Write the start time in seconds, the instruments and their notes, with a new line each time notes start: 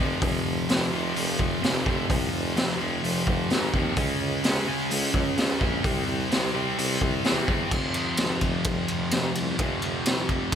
Already playing: distorted electric guitar F2
0.00 tuba F1, distorted electric guitar C3 F3
0.21 tuba F1, distorted electric guitar F2 C3 F3, kick, open hi-hat
0.45 tuba F1
0.68 tuba F1, distorted electric guitar F2 C3 F3, snare, open hi-hat
0.92 tuba F1, distorted electric guitar F2 C3 F3
1.15 tuba F1, distorted electric guitar F2 C3 F3, open hi-hat
1.39 tuba F1, kick
1.61 tuba F1, distorted electric guitar F2 C3 F3, snare, open hi-hat
1.85 tuba F1, distorted electric guitar F2 C3 F3, kick
2.09 tuba C2, distorted electric guitar F2 C3 F3, kick, open hi-hat
2.33 tuba F1
2.56 tuba F1, distorted electric guitar F2 C3 F3, snare, open hi-hat
2.79 tuba F1, distorted electric guitar F2 C3 F3
3.03 tuba F1, distorted electric guitar F2 C3 F3, open hi-hat
3.27 tuba F1, kick
3.50 tuba G#1, distorted electric guitar F2 C3 F3, snare, open hi-hat
3.73 tuba D#2, distorted electric guitar F2 C3 F3, kick
3.96 tuba C#2, distorted electric guitar C#3 G#3 C#4, kick, open hi-hat
4.21 tuba C#2
4.43 tuba C#2, distorted electric guitar C#3 G#3 C#4, snare, open hi-hat
4.67 distorted electric guitar C#3 G#3 C#4
4.91 tuba C#2, distorted electric guitar C#3 G#3 C#4, open hi-hat
5.14 tuba C#2, kick
5.38 tuba C#2, distorted electric guitar C#3 G#3 C#4, snare, open hi-hat
5.60 tuba A#1, distorted electric guitar C#3 G#3 C#4, kick
5.84 tuba C2, distorted electric guitar C3 G3 C4, kick, open hi-hat
6.07 tuba C2
6.30 tuba C2, distorted electric guitar C3 G3 C4, snare, open hi-hat
6.54 tuba C2, distorted electric guitar C3 G3 C4
6.78 tuba C2, distorted electric guitar C3 G3 C4, open hi-hat
7.01 tuba C2, kick
7.24 tuba E2, distorted electric guitar C3 G3 C4, snare, open hi-hat
7.48 tuba E2, distorted electric guitar C3 G3 C4, kick
7.71 tuba F1, distorted electric guitar F2 C3 F3, kick, crash
7.94 ride
8.17 tuba G#1, snare, ride
8.41 tuba F1, kick, ride
8.64 tuba F1, kick, ride
8.88 tuba F1, ride
9.11 tuba F1, snare, ride
9.35 tuba C2, ride
9.58 tuba F1, distorted electric guitar F2 C3 F3, kick, ride
9.82 tuba F1, ride
10.06 tuba C2, snare, ride
10.29 tuba F1, kick, ride